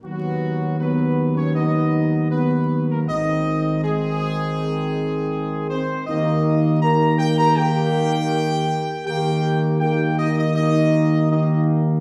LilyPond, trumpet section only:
\new Staff \with { instrumentName = "Trumpet section" } { \time 4/4 \key ees \major \tempo 4 = 80 fis'4 b'8. des''16 dis''4 b'8. bes'16 | ees''4 aes'2~ aes'8 c''8 | ees''4 bes''8 g''16 bes''16 g''2 | g''4 g''8 ees''16 ees''16 ees''4 ees''8 r8 | }